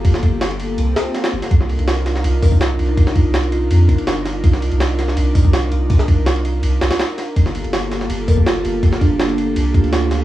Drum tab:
RD |x-x-xxx-x-x-xx-x|x-xxx-x-x---x-x-|x-x-xxx-x-xxx-x-|x-xxx-x-x---x-x-|
HH |----------------|----------o-----|----------------|----------o-----|
SD |-o--o-----o-oo-o|-o--o-oo----o---|-o--o-------o-o-|-o--o-oo----o---|
BD |o-o-------------|o---------oo----|o-o-------o-----|o---------oo----|

RD |x-x-xxx-x-xxx-x-|x-xxx-x-x---x-x-|x-x-xxx-x-xxx-x-|
HH |----------------|----------o-----|----------------|
SD |-o--o-----ooo-o-|-o--o-oo----o---|-o--o-------o-o-|
BD |o-o-------------|o---------oo----|o-o-------o-----|